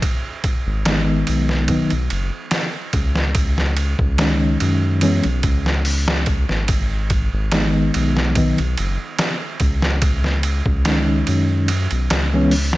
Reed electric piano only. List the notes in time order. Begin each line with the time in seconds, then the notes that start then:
0.87 D#3 G#3 B3 D#4
1.69 D#3 F#3 B3 D#4
4.19 D#3 G#3 C#4 D#4
5.02 E3 G#3 B3 C#4
7.53 D#3 G#3 B3 D#4
8.36 D#3 F#3 B3 D#4
10.87 D#3 G#3 C#4 D#4
12.34 E3 G#3 B3 C#4